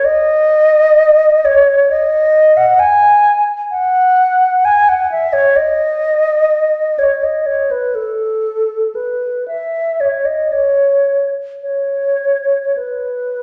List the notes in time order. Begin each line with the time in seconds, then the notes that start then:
0.05 D#5
1.45 C#5
1.90 D#5
2.57 F#5
2.79 G#5
3.71 F#5
4.65 G#5
4.89 F#5
5.12 E5
5.33 C#5
5.56 D#5
6.99 C#5
7.23 D#5
7.46 C#5
7.71 B4
7.95 A4
8.95 B4
9.48 E5
10.00 C#5
10.25 D#5
10.52 C#5
11.63 C#5
12.77 B4